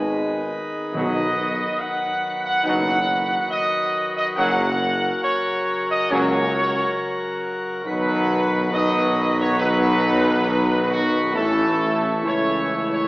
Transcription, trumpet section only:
0, 0, Header, 1, 2, 480
1, 0, Start_track
1, 0, Key_signature, 5, "major"
1, 0, Tempo, 864553
1, 522, Time_signature, 4, 2, 24, 8
1, 4363, Tempo, 874636
1, 6283, Tempo, 898204
1, 7203, End_track
2, 0, Start_track
2, 0, Title_t, "Trumpet section"
2, 0, Program_c, 0, 61
2, 0, Note_on_c, 0, 73, 119
2, 259, Note_off_c, 0, 73, 0
2, 517, Note_on_c, 0, 75, 119
2, 975, Note_off_c, 0, 75, 0
2, 993, Note_on_c, 0, 78, 127
2, 1349, Note_off_c, 0, 78, 0
2, 1355, Note_on_c, 0, 78, 127
2, 1463, Note_off_c, 0, 78, 0
2, 1470, Note_on_c, 0, 78, 127
2, 1927, Note_off_c, 0, 78, 0
2, 1947, Note_on_c, 0, 75, 127
2, 2286, Note_off_c, 0, 75, 0
2, 2309, Note_on_c, 0, 75, 127
2, 2364, Note_off_c, 0, 75, 0
2, 2422, Note_on_c, 0, 78, 127
2, 2889, Note_off_c, 0, 78, 0
2, 2905, Note_on_c, 0, 73, 127
2, 3251, Note_off_c, 0, 73, 0
2, 3276, Note_on_c, 0, 75, 127
2, 3384, Note_on_c, 0, 73, 127
2, 3389, Note_off_c, 0, 75, 0
2, 4112, Note_off_c, 0, 73, 0
2, 4360, Note_on_c, 0, 71, 127
2, 4820, Note_off_c, 0, 71, 0
2, 4843, Note_on_c, 0, 75, 127
2, 5181, Note_off_c, 0, 75, 0
2, 5208, Note_on_c, 0, 73, 127
2, 5313, Note_on_c, 0, 71, 127
2, 5317, Note_off_c, 0, 73, 0
2, 6013, Note_off_c, 0, 71, 0
2, 6038, Note_on_c, 0, 66, 127
2, 6263, Note_off_c, 0, 66, 0
2, 6281, Note_on_c, 0, 69, 126
2, 6735, Note_off_c, 0, 69, 0
2, 6762, Note_on_c, 0, 73, 120
2, 7101, Note_off_c, 0, 73, 0
2, 7123, Note_on_c, 0, 73, 113
2, 7203, Note_off_c, 0, 73, 0
2, 7203, End_track
0, 0, End_of_file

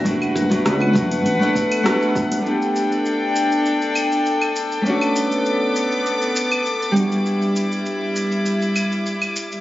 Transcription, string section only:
0, 0, Header, 1, 2, 480
1, 0, Start_track
1, 0, Tempo, 600000
1, 43, Time_signature, 4, 2, 24, 8
1, 7685, End_track
2, 0, Start_track
2, 0, Title_t, "String section"
2, 0, Program_c, 0, 48
2, 42, Note_on_c, 0, 78, 82
2, 43, Note_on_c, 0, 71, 91
2, 1943, Note_off_c, 0, 78, 0
2, 1944, Note_off_c, 0, 71, 0
2, 1958, Note_on_c, 0, 79, 84
2, 1960, Note_on_c, 0, 62, 69
2, 1962, Note_on_c, 0, 69, 67
2, 3861, Note_off_c, 0, 79, 0
2, 3862, Note_off_c, 0, 62, 0
2, 3877, Note_on_c, 0, 59, 73
2, 3881, Note_on_c, 0, 86, 83
2, 5531, Note_off_c, 0, 69, 0
2, 5543, Note_off_c, 0, 59, 0
2, 5563, Note_on_c, 0, 55, 64
2, 5563, Note_on_c, 0, 64, 63
2, 7685, Note_off_c, 0, 55, 0
2, 7685, Note_off_c, 0, 64, 0
2, 7685, Note_off_c, 0, 86, 0
2, 7685, End_track
0, 0, End_of_file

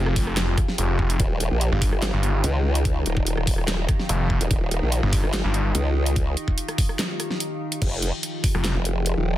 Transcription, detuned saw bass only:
0, 0, Header, 1, 2, 480
1, 0, Start_track
1, 0, Tempo, 413793
1, 1389, Time_signature, 4, 2, 24, 8
1, 10880, End_track
2, 0, Start_track
2, 0, Title_t, "Detuned saw bass"
2, 0, Program_c, 0, 39
2, 0, Note_on_c, 0, 29, 97
2, 170, Note_off_c, 0, 29, 0
2, 188, Note_on_c, 0, 29, 101
2, 650, Note_off_c, 0, 29, 0
2, 908, Note_on_c, 0, 29, 98
2, 1370, Note_off_c, 0, 29, 0
2, 1994, Note_on_c, 0, 31, 109
2, 2214, Note_off_c, 0, 31, 0
2, 2474, Note_on_c, 0, 31, 101
2, 2810, Note_off_c, 0, 31, 0
2, 4748, Note_on_c, 0, 29, 99
2, 5094, Note_off_c, 0, 29, 0
2, 5834, Note_on_c, 0, 31, 105
2, 6054, Note_off_c, 0, 31, 0
2, 6314, Note_on_c, 0, 31, 99
2, 6650, Note_off_c, 0, 31, 0
2, 9914, Note_on_c, 0, 29, 104
2, 10134, Note_off_c, 0, 29, 0
2, 10880, End_track
0, 0, End_of_file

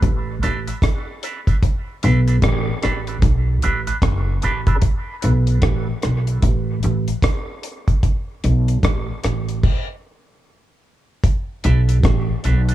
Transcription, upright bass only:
0, 0, Header, 1, 2, 480
1, 0, Start_track
1, 0, Key_signature, 2, "minor"
1, 0, Tempo, 801068
1, 973, Time_signature, 4, 2, 24, 8
1, 7637, End_track
2, 0, Start_track
2, 0, Title_t, "Upright bass"
2, 0, Program_c, 0, 32
2, 19, Note_on_c, 0, 33, 87
2, 226, Note_off_c, 0, 33, 0
2, 261, Note_on_c, 0, 33, 90
2, 388, Note_off_c, 0, 33, 0
2, 1222, Note_on_c, 0, 35, 98
2, 1427, Note_off_c, 0, 35, 0
2, 1456, Note_on_c, 0, 33, 95
2, 1584, Note_off_c, 0, 33, 0
2, 1704, Note_on_c, 0, 33, 85
2, 1908, Note_off_c, 0, 33, 0
2, 1935, Note_on_c, 0, 35, 79
2, 2143, Note_off_c, 0, 35, 0
2, 2181, Note_on_c, 0, 33, 91
2, 2307, Note_off_c, 0, 33, 0
2, 2412, Note_on_c, 0, 30, 87
2, 2621, Note_off_c, 0, 30, 0
2, 2659, Note_on_c, 0, 33, 83
2, 2865, Note_off_c, 0, 33, 0
2, 3139, Note_on_c, 0, 35, 93
2, 3345, Note_off_c, 0, 35, 0
2, 3372, Note_on_c, 0, 33, 91
2, 3502, Note_off_c, 0, 33, 0
2, 3621, Note_on_c, 0, 35, 82
2, 3827, Note_off_c, 0, 35, 0
2, 3854, Note_on_c, 0, 33, 83
2, 4062, Note_off_c, 0, 33, 0
2, 4098, Note_on_c, 0, 33, 91
2, 4226, Note_off_c, 0, 33, 0
2, 5058, Note_on_c, 0, 35, 88
2, 5265, Note_off_c, 0, 35, 0
2, 5295, Note_on_c, 0, 33, 87
2, 5424, Note_off_c, 0, 33, 0
2, 5539, Note_on_c, 0, 33, 78
2, 5746, Note_off_c, 0, 33, 0
2, 6980, Note_on_c, 0, 35, 92
2, 7186, Note_off_c, 0, 35, 0
2, 7216, Note_on_c, 0, 33, 99
2, 7345, Note_off_c, 0, 33, 0
2, 7459, Note_on_c, 0, 35, 91
2, 7637, Note_off_c, 0, 35, 0
2, 7637, End_track
0, 0, End_of_file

